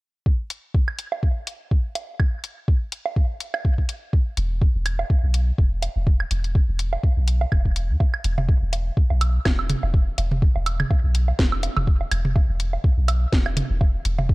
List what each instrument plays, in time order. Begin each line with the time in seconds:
0.26 kick
0.50 closed hi-hat
0.74 kick
0.88 high woodblock
0.99 closed hi-hat
1.12 low woodblock
1.23 kick
1.47 closed hi-hat
1.71 kick
1.95 closed hi-hat, low woodblock
2.20 kick, high woodblock
2.44 closed hi-hat
2.68 kick
2.92 closed hi-hat
3.06 low woodblock
3.16 kick
3.40 closed hi-hat
3.54 high woodblock, low woodblock
3.65 kick
3.78 kick
3.89 closed hi-hat
4.13 kick
4.37 sub bass E1, closed hi-hat
4.62 kick
4.75 sub bass E1
4.86 closed hi-hat, high woodblock
4.99 low woodblock
5.10 kick
5.23 sub bass B1
5.34 closed hi-hat
5.58 sub bass E1, kick
5.82 closed hi-hat, low woodblock
5.96 sub bass E1
6.07 kick
6.20 high woodblock
6.31 sub bass E1, closed hi-hat
6.44 closed hi-hat
6.55 kick
6.69 sub bass E1
6.79 closed hi-hat
6.93 low woodblock
7.03 kick
7.17 sub bass B1
7.28 closed hi-hat
7.41 low woodblock
7.52 sub bass E1, kick, high woodblock
7.65 kick
7.76 closed hi-hat
7.89 sub bass E2
8.00 kick, low woodblock
8.14 high woodblock
8.24 sub bass E1, closed hi-hat
8.38 mid tom, low woodblock
8.49 kick
8.62 sub bass E1
8.73 closed hi-hat, low woodblock
8.97 kick
9.10 sub bass B1, low woodblock
9.21 closed hi-hat, high woodblock
9.45 sub bass E1, kick, snare, high woodblock, low woodblock
9.59 high woodblock
9.70 closed hi-hat, mid tom
9.83 sub bass E1, low woodblock
9.94 kick
10.18 sub bass E1, closed hi-hat, low woodblock
10.31 mid tom
10.42 kick
10.56 sub bass E1, low woodblock
10.66 closed hi-hat, high woodblock
10.80 mid tom, high woodblock
10.91 kick, low woodblock
11.04 sub bass B1
11.15 closed hi-hat
11.28 low woodblock
11.39 sub bass E1, kick, snare
11.52 high woodblock
11.63 closed hi-hat, low woodblock
11.77 sub bass E1, mid tom, high woodblock
11.87 kick
12.01 low woodblock
12.11 sub bass E1, closed hi-hat, high woodblock
12.25 mid tom
12.36 kick, low woodblock
12.49 sub bass E1
12.60 closed hi-hat
12.73 low woodblock
12.84 kick
12.98 sub bass B1
13.08 closed hi-hat, high woodblock, low woodblock
13.32 sub bass E1, kick, snare
13.46 high woodblock, low woodblock
13.57 closed hi-hat, mid tom
13.70 sub bass E1
13.81 kick, low woodblock
14.05 sub bass E1, closed hi-hat
14.19 mid tom, low woodblock
14.29 kick